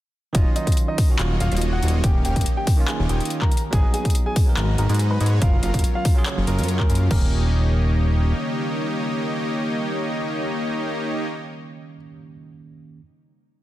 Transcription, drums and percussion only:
0.35 kick loud
0.35 closed hi-hat medium
0.56 closed hi-hat medium
0.67 kick medium
0.67 closed hi-hat medium
0.72 closed hi-hat medium
0.77 closed hi-hat medium
0.98 kick loud
0.98 open hi-hat loud
1.19 clap loud
1.19 closed hi-hat medium
1.40 closed hi-hat medium
1.52 closed hi-hat medium
1.57 closed hi-hat medium
1.61 closed hi-hat medium
1.83 closed hi-hat medium
1.88 closed hi-hat medium
2.04 kick loud
2.04 closed hi-hat medium
2.25 closed hi-hat medium
2.36 kick medium
2.36 closed hi-hat medium
2.41 closed hi-hat medium
2.46 closed hi-hat medium
2.67 kick loud
2.67 open hi-hat loud
2.88 clap loud
2.88 closed hi-hat medium
3.09 closed hi-hat medium
3.20 closed hi-hat medium
3.25 closed hi-hat medium
3.30 closed hi-hat medium
3.42 kick medium
3.42 clap soft
3.52 closed hi-hat medium
3.57 closed hi-hat medium
3.73 kick loud
3.73 closed hi-hat medium
3.94 closed hi-hat medium
4.05 kick medium
4.05 closed hi-hat medium
4.10 closed hi-hat medium
4.15 closed hi-hat medium
4.36 kick loud
4.36 open hi-hat loud
4.57 clap loud
4.57 closed hi-hat medium
4.78 closed hi-hat medium
4.89 closed hi-hat medium
4.94 closed hi-hat medium
4.99 closed hi-hat medium
5.21 closed hi-hat medium
5.26 closed hi-hat medium
5.42 kick loud
5.42 closed hi-hat medium
5.63 closed hi-hat medium
5.74 kick medium
5.74 closed hi-hat medium
5.79 closed hi-hat medium
5.84 closed hi-hat medium
6.05 kick loud
6.05 open hi-hat medium
6.26 clap loud
6.26 closed hi-hat medium
6.47 closed hi-hat medium
6.59 closed hi-hat medium
6.64 closed hi-hat medium
6.68 closed hi-hat medium
6.80 kick medium
6.80 clap soft
6.90 closed hi-hat soft
6.95 closed hi-hat medium
7.11 kick loud
7.11 crash medium

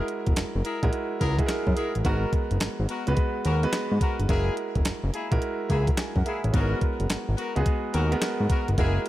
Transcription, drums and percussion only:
0.08 closed hi-hat medium
0.26 kick medium
0.26 closed hi-hat soft
0.36 snare loud
0.36 clap medium
0.36 closed hi-hat medium
0.65 closed hi-hat medium
0.83 kick medium
0.83 closed hi-hat medium
0.93 closed hi-hat medium
1.21 kick medium
1.21 closed hi-hat medium
1.39 kick medium
1.39 closed hi-hat medium
1.49 snare loud
1.49 clap medium
1.49 closed hi-hat medium
1.67 kick medium
1.77 closed hi-hat medium
1.95 closed hi-hat soft
2.05 kick loud
2.05 closed hi-hat medium
2.33 kick medium
2.33 closed hi-hat medium
2.51 closed hi-hat soft
2.60 snare loud
2.60 clap medium
2.60 closed hi-hat medium
2.89 closed hi-hat medium
3.07 closed hi-hat medium
3.17 kick loud
3.17 closed hi-hat medium
3.45 closed hi-hat medium
3.63 closed hi-hat medium
3.73 snare loud
3.73 clap medium
3.73 closed hi-hat medium
4.01 kick medium
4.01 closed hi-hat medium
4.20 closed hi-hat soft
4.29 kick loud
4.29 closed hi-hat medium
4.57 closed hi-hat medium
4.75 kick medium
4.75 closed hi-hat soft
4.85 snare loud
4.85 clap medium
4.85 closed hi-hat loud
5.14 closed hi-hat medium
5.32 kick loud
5.32 closed hi-hat medium
5.42 closed hi-hat medium
5.70 kick medium
5.70 closed hi-hat medium
5.87 kick medium
5.87 closed hi-hat medium
5.98 snare loud
5.98 clap medium
5.98 closed hi-hat medium
6.16 kick medium
6.26 closed hi-hat medium
6.44 closed hi-hat soft
6.54 kick loud
6.54 closed hi-hat medium
6.81 kick medium
6.81 closed hi-hat medium
7.00 closed hi-hat soft
7.10 snare loud
7.10 clap medium
7.10 closed hi-hat medium
7.38 closed hi-hat medium
7.56 closed hi-hat medium
7.66 kick medium
7.66 closed hi-hat medium
7.94 closed hi-hat medium
8.12 closed hi-hat medium
8.22 snare loud
8.22 clap medium
8.22 closed hi-hat medium
8.50 kick loud
8.50 closed hi-hat medium
8.68 closed hi-hat soft
8.78 kick loud
8.78 closed hi-hat medium
9.06 closed hi-hat medium

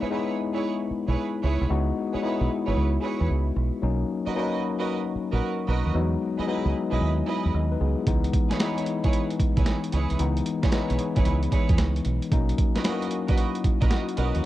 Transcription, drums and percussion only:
8.07 kick loud
8.07 closed hi-hat medium
8.24 closed hi-hat medium
8.33 kick medium
8.33 closed hi-hat medium
8.51 snare medium
8.51 closed hi-hat soft
8.60 snare loud
8.60 closed hi-hat medium
8.78 closed hi-hat medium
8.86 closed hi-hat medium
9.04 kick medium
9.04 closed hi-hat soft
9.13 closed hi-hat medium
9.30 closed hi-hat medium
9.40 kick medium
9.40 closed hi-hat medium
9.57 kick loud
9.57 closed hi-hat medium
9.66 snare medium
9.66 closed hi-hat medium
9.84 closed hi-hat medium
9.92 closed hi-hat medium
10.10 closed hi-hat soft
10.19 closed hi-hat medium
10.37 closed hi-hat medium
10.46 closed hi-hat medium
10.63 kick medium
10.63 snare medium
10.63 closed hi-hat soft
10.72 snare loud
10.72 closed hi-hat medium
10.90 closed hi-hat medium
10.99 closed hi-hat medium
11.16 kick medium
11.16 closed hi-hat medium
11.25 closed hi-hat medium
11.43 closed hi-hat medium
11.52 kick medium
11.52 closed hi-hat medium
11.69 kick loud
11.69 closed hi-hat medium
11.78 snare loud
11.78 closed hi-hat medium
11.96 closed hi-hat soft
12.05 closed hi-hat medium
12.22 closed hi-hat soft
12.32 kick loud
12.32 closed hi-hat medium
12.49 closed hi-hat medium
12.58 kick medium
12.58 closed hi-hat medium
12.76 snare medium
12.76 closed hi-hat soft
12.84 snare loud
12.84 closed hi-hat medium
13.02 closed hi-hat medium
13.11 closed hi-hat medium
13.28 kick loud
13.28 closed hi-hat soft
13.38 closed hi-hat medium
13.55 closed hi-hat medium
13.64 kick medium
13.64 closed hi-hat medium
13.82 kick loud
13.82 closed hi-hat medium
13.91 snare loud
13.91 closed hi-hat medium
14.09 closed hi-hat medium
14.17 closed hi-hat medium
14.35 closed hi-hat soft

